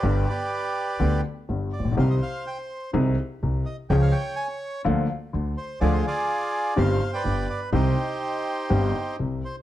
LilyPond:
<<
  \new Staff \with { instrumentName = "Bandoneon" } { \time 4/4 \key c \minor \tempo 4 = 125 << { d''8 d''2 r4 d''8 | f''16 ees''16 f''8 g''8 r2 ees''8 | g''16 f''16 g''8 aes''8 r2 c''8 | d''16 c''16 d''4. f''8. g''8. d''8 |
c''2. r8 c''8 | } \\ { <g' b'>8 <g' b'>2 r4. | c''2 r2 | des''2 r2 | <f' aes'>8 <f' aes'>4. c''8. <b' d''>4~ <b' d''>16 |
<ees' g'>2. r4 | } >> }
  \new Staff \with { instrumentName = "Grand piano" } { \clef bass \time 4/4 \key c \minor <g,, g, d g b g'>8 r4. <d, d g b g'>8 r8 <g,, g,>8 r32 a,,32 bes,,32 b,,32 | <c, c ees g c' g'>8 r4. <c, c ees aes c' aes'>8 r8 <c, c>8 r8 | <des, des f aes des' aes'>8 r4. <d, d f bes f'>8 r8 <d, d>8 r8 | <d, d f aes f'>8 r4. <g,, g, ees g c' g'>8 r8 <g,, g,>8 r8 |
<c, c ees g c' g'>8 r4. <g,, g, ees g c' g'>8 r8 <c, c>8 r8 | }
  \new Staff \with { instrumentName = "Upright bass" } { \clef bass \time 4/4 \key c \minor g,,16. r4. r32 d,16. r8 r32 g,,16. r16 a,,32 bes,,32 b,,32 | c,16. r4. r32 c,16. r8 r32 c,16. r8 r32 | des,16. r4. r32 d,16. r8 r32 d,16. r8 r32 | d,16. r4. r32 g,,16. r8 r32 g,,16. r8 r32 |
c,16. r4. r32 g,,16. r8 r32 c,16. r8 r32 | }
>>